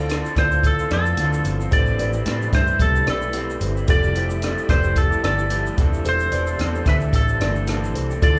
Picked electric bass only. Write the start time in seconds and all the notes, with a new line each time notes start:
Already playing: D2
0.36 D2
0.91 F2
1.18 D2
1.45 G1
1.72 A1
1.99 A1
2.26 A2
2.53 G2
2.80 C2
3.07 B1
3.61 G1
3.89 F1
4.69 F1
5.24 G1
5.78 E1
6.05 E1
6.32 E1
6.60 E2
6.86 D2
7.13 A1
7.40 G1
7.95 C2
8.22 D2